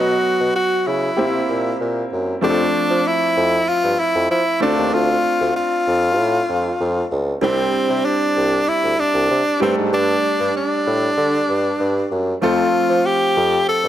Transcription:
0.00 0.16 B2 loud
0.00 1.15 F#3 medium
0.00 1.15 B3 medium
0.00 0.55 F#4 loud
0.00 1.16 F#4 medium
0.00 1.15 D#5 medium
0.40 0.51 B2 medium
0.56 0.89 F#4 loud
0.87 1.10 C#3 medium
0.87 1.80 E4 medium
1.17 1.41 C3 loud
1.17 2.40 A#3 medium
1.17 2.41 C4 medium
1.17 2.41 E4 medium
1.17 2.40 G4 medium
1.49 1.73 A#2 medium
1.80 2.04 A#2 medium
2.12 2.35 F#2 medium
2.41 2.66 F2 loud
2.41 4.57 F3 medium
2.41 4.57 A3 medium
2.41 4.57 C4 medium
2.41 3.08 D4 loud
2.41 2.50 G4 medium
2.50 4.61 A4 medium
2.90 3.02 F3 loud
3.07 3.70 E4 loud
3.37 3.60 F2 loud
3.68 4.01 F4 loud
3.83 3.95 G2 medium
3.99 4.30 E4 loud
4.15 4.26 F2 medium
4.30 4.42 F3 loud
4.30 4.59 E4 loud
4.60 4.73 D2 medium
4.60 7.07 A3 medium
4.60 7.07 C4 medium
4.60 7.07 D4 medium
4.60 4.95 D4 loud
4.60 7.08 F4 medium
4.60 7.08 A4 medium
4.78 4.89 D#2 medium
4.93 5.16 D2 loud
4.93 5.55 F4 loud
5.40 5.51 D2 loud
5.56 7.08 F4 loud
5.87 6.19 F2 loud
6.18 6.41 A2 loud
6.49 6.72 F2 medium
6.80 7.03 F2 loud
7.11 7.35 C#2 loud
7.41 7.66 C2 loud
7.41 9.57 G3 medium
7.41 9.57 C4 medium
7.41 8.07 C4 loud
7.41 9.57 D4 medium
7.41 9.58 E4 medium
7.41 9.58 G4 medium
7.89 8.01 C3 loud
8.05 8.70 D4 loud
8.36 8.60 C2 loud
8.68 9.01 E4 loud
8.83 8.95 D2 medium
8.99 9.62 D4 loud
9.14 9.26 C2 medium
9.30 9.42 C3 loud
9.60 9.73 G2 loud
9.60 12.07 G3 medium
9.60 12.07 A3 medium
9.60 9.76 C4 medium
9.60 12.07 D4 medium
9.60 12.08 G4 medium
9.60 12.08 A4 medium
9.77 9.89 G#2 medium
9.92 10.16 G2 loud
9.92 10.52 D4 loud
10.39 10.51 G2 medium
10.56 12.08 D4 medium
10.86 11.10 A2 loud
11.17 11.41 D3 loud
11.48 11.72 G2 medium
11.80 12.03 G2 loud
12.11 12.35 F#2 medium
12.41 12.66 F2 loud
12.41 13.88 F3 medium
12.41 13.88 A3 medium
12.41 13.88 C4 medium
12.41 13.07 F4 loud
12.41 13.88 F4 medium
12.41 13.88 A4 medium
12.89 13.01 F3 loud
13.06 13.68 G4 loud
13.36 13.60 F2 loud
13.68 13.88 A4 loud
13.84 13.88 G2 medium

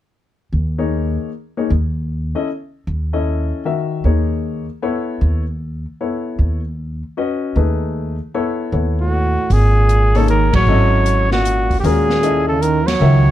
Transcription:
0.53 1.16 D#2 medium
0.78 1.29 A#3 medium
0.78 1.28 D#4 soft
0.78 1.28 G#4 soft
0.78 1.29 C#5 medium
1.57 1.69 A#3 medium
1.57 1.69 D#4 medium
1.57 1.69 G#4 medium
1.57 1.69 C#5 medium
1.70 2.34 D#2 medium
2.35 2.47 C#4 medium
2.35 2.47 E4 soft
2.35 2.47 A4 soft
2.35 2.47 D#5 medium
2.87 3.51 D#2 medium
3.13 3.63 C#4 soft
3.13 3.63 E4 soft
3.13 3.63 A4 soft
3.13 3.63 D#5 medium
3.65 4.03 D#3 soft
3.65 4.03 F#4 soft
3.65 4.03 A#4 soft
3.65 4.03 E5 medium
4.04 4.68 D#2 medium
4.04 4.64 A#3 soft
4.04 4.64 D#4 soft
4.04 4.64 G#4 soft
4.04 4.64 C#5 medium
4.82 5.42 B3 medium
4.82 5.42 E4 medium
4.82 5.42 A4 medium
4.82 5.42 C#5 medium
5.21 5.85 D#2 medium
6.01 6.60 B3 soft
6.01 6.60 E4 soft
6.01 6.60 A4 soft
6.01 6.60 C#5 medium
6.39 7.02 D#2 medium
7.17 7.55 C#4 medium
7.17 7.55 F#4 medium
7.17 7.55 B4 soft
7.17 7.55 D#5 medium
7.56 8.19 D#2 medium
7.56 8.15 A3 medium
7.56 8.15 D#4 soft
7.56 8.15 G#4 soft
7.56 8.15 B4 medium
8.34 8.71 B3 medium
8.34 8.71 E4 medium
8.34 8.71 A4 medium
8.34 8.72 C#5 medium
8.72 9.36 D#2 medium
8.72 9.32 B3 soft
8.72 9.32 E4 soft
8.72 9.32 A4 soft
8.72 9.32 C#5 soft
9.00 9.54 A2 medium
9.00 9.54 F#4 medium
9.50 10.50 G#1 medium
9.50 10.18 A#2 medium
9.50 10.19 G#4 medium
9.50 open hi-hat soft
9.89 closed hi-hat medium
10.15 10.29 C#3 medium
10.15 10.65 A#3 medium
10.15 10.65 D#4 medium
10.15 10.65 G#4 medium
10.15 10.29 A4 medium
10.15 10.65 C#5 medium
10.15 open hi-hat soft
10.28 10.53 D#3 medium
10.28 10.53 A#4 medium
10.28 closed hi-hat soft
10.53 10.66 A1 medium
10.53 11.28 F#3 medium
10.53 11.28 C#5 loud
10.53 kick medium
10.53 ride medium
10.67 11.80 G#1 medium
10.67 11.76 C#4 medium
10.67 11.76 E4 medium
10.67 11.77 A4 medium
10.67 11.77 D#5 medium
11.06 closed hi-hat medium
11.31 11.76 A#2 medium
11.31 11.76 F#4 medium
11.31 snare medium
11.45 closed hi-hat medium
11.71 kick medium
11.71 open hi-hat soft
11.79 11.84 A2 medium
11.79 11.86 G4 medium
11.83 12.96 D#2 medium
11.83 12.48 A#2 medium
11.83 12.22 G#3 medium
11.83 12.22 C#4 medium
11.83 12.22 F#4 medium
11.83 12.48 G#4 medium
11.83 12.22 A#4 medium
11.83 open hi-hat soft
12.10 snare medium
12.23 12.82 C#4 medium
12.23 12.83 E4 medium
12.23 12.82 A4 medium
12.23 12.83 D#5 medium
12.23 closed hi-hat medium
12.49 12.63 C#3 medium
12.49 12.63 A4 medium
12.61 12.88 D#3 medium
12.61 12.88 A#4 medium
12.61 closed hi-hat soft
12.87 13.31 F#3 medium
12.87 13.31 C#5 medium
12.87 snare medium
12.87 ride medium
13.01 13.31 C#2 medium
13.01 13.31 D#3 medium
13.01 13.31 F#4 medium
13.01 13.31 A#4 medium
13.01 13.31 E5 medium

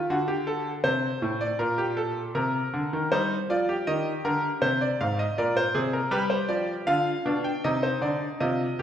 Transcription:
0.10 0.83 D3 medium
0.10 0.28 F#4 medium
0.28 0.46 G4 medium
0.47 0.70 A4 medium
0.84 1.07 C3 medium
0.84 1.39 C5 medium
1.22 1.46 A2 medium
1.41 1.59 D5 medium
1.59 2.33 A#2 medium
1.59 1.78 A#4 medium
1.78 1.97 G4 medium
1.97 2.21 A4 medium
2.35 2.59 C3 medium
2.35 3.09 A#4 medium
2.74 2.92 D3 medium
2.93 3.11 D#3 medium
3.12 3.35 G3 medium
3.12 3.35 D#4 medium
3.12 3.35 C5 medium
3.50 3.73 F3 medium
3.50 3.68 F4 medium
3.50 3.73 D5 medium
3.69 4.60 G4 medium
3.87 4.11 D#3 medium
3.87 4.10 D#5 medium
4.25 4.48 D3 medium
4.25 4.48 A#4 medium
4.62 4.85 C3 medium
4.62 4.80 C5 medium
4.81 5.00 D5 medium
5.01 5.24 G#2 medium
5.01 5.19 F5 medium
5.19 5.37 D#5 medium
5.38 5.61 A#2 medium
5.38 5.62 A#4 medium
5.38 5.56 D5 medium
5.57 5.80 C5 medium
5.75 5.98 C3 medium
5.75 5.98 G#4 medium
5.93 6.12 A#4 medium
6.11 6.35 G3 medium
6.11 6.86 G4 medium
6.11 6.30 B4 medium
6.30 6.49 C5 medium
6.48 6.73 F3 medium
6.48 6.73 D5 medium
6.87 7.11 D3 medium
6.87 7.11 F4 medium
6.87 7.43 F5 medium
7.25 7.49 B2 medium
7.25 7.50 D4 medium
7.44 7.63 G5 medium
7.64 7.88 C3 medium
7.64 8.39 D#4 medium
7.64 7.83 D#5 medium
7.83 8.02 C5 medium
8.01 8.26 D3 medium
8.01 8.26 D5 medium
8.40 8.64 C3 medium
8.40 8.65 F4 medium
8.40 8.82 D#5 medium
8.79 8.82 G4 medium

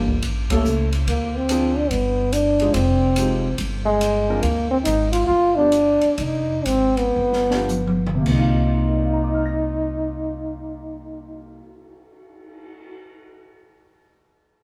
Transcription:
0.00 0.22 G1 medium
0.00 0.20 A#3 medium
0.08 kick medium
0.22 0.64 A1 medium
0.22 kick soft
0.22 ride medium
0.50 0.64 G3 medium
0.50 0.91 A3 medium
0.50 0.64 A#3 medium
0.50 0.64 C#4 medium
0.50 0.64 A4 medium
0.50 kick medium
0.50 ride medium
0.65 1.06 C#2 medium
0.65 hi-hat pedal soft
0.93 ride soft
1.07 1.87 D2 medium
1.07 1.37 A#3 medium
1.07 kick soft
1.07 ride medium
1.36 1.79 C4 medium
1.49 1.74 F3 medium
1.49 1.74 C4 medium
1.49 1.74 D4 medium
1.49 1.75 G#4 medium
1.49 hi-hat pedal medium
1.49 ride medium
1.77 1.92 D4 medium
1.91 2.71 G1 medium
1.91 2.34 B3 medium
1.91 kick soft
1.91 ride medium
2.33 2.76 D4 medium
2.33 hi-hat pedal soft
2.33 ride medium
2.60 2.74 F3 medium
2.60 2.74 G#3 medium
2.60 2.74 D#4 medium
2.60 2.74 G#4 medium
2.60 ride soft
2.74 3.55 F1 medium
2.74 3.59 C4 medium
2.74 kick soft
2.74 ride medium
3.16 3.41 F3 medium
3.16 3.42 G#3 medium
3.16 3.42 D#4 soft
3.16 3.42 G4 medium
3.16 hi-hat pedal medium
3.16 ride medium
3.58 4.39 G1 medium
3.58 kick soft
3.58 ride medium
3.85 4.38 G#3 loud
4.01 hi-hat pedal medium
4.01 ride medium
4.28 4.42 F3 medium
4.28 4.42 C4 medium
4.28 4.42 D4 medium
4.28 4.43 A#4 medium
4.42 4.82 D2 medium
4.42 4.68 A#3 medium
4.42 kick soft
4.42 ride medium
4.71 4.77 C4 medium
4.84 5.26 G#1 medium
4.84 5.10 D#4 medium
4.84 hi-hat pedal medium
4.84 ride medium
5.12 5.26 F4 medium
5.12 ride medium
5.27 5.98 G1 medium
5.27 5.57 F4 loud
5.27 kick soft
5.55 5.71 F3 medium
5.55 5.71 B3 soft
5.55 6.17 D4 loud
5.55 5.71 D4 medium
5.55 5.72 G4 medium
5.72 hi-hat pedal medium
5.72 ride medium
6.01 muted upright bass stroke soft
6.01 ride soft
6.18 6.62 F1 medium
6.18 6.67 D#4 medium
6.18 kick soft
6.18 ride medium
6.65 7.13 G#1 medium
6.65 7.00 C4 medium
6.65 hi-hat pedal medium
6.65 ride medium
6.97 8.06 B3 medium
6.97 ride soft
7.16 8.23 G1 medium
7.33 snare soft
7.51 7.68 F3 medium
7.51 7.68 B3 medium
7.51 7.68 D4 medium
7.51 7.68 G4 medium
7.51 snare medium
7.69 hi-hat pedal medium
7.69 high tom medium
7.87 high tom medium
8.07 mid tom medium
8.15 11.51 C3 medium
8.21 11.57 A#3 medium
8.26 11.59 C2 medium
8.26 11.64 C4 medium
8.26 11.61 D#4 medium
8.26 kick soft
8.26 crash medium
8.34 11.70 D#4 medium
8.39 11.76 F4 medium
8.65 cymbal swell soft
8.88 12.21 A#4 soft
8.96 12.29 D5 soft
9.04 12.37 F5 soft
9.13 12.46 A#5 soft
9.24 12.56 D6 soft
9.34 12.67 F6 soft
9.46 12.78 A#6 soft

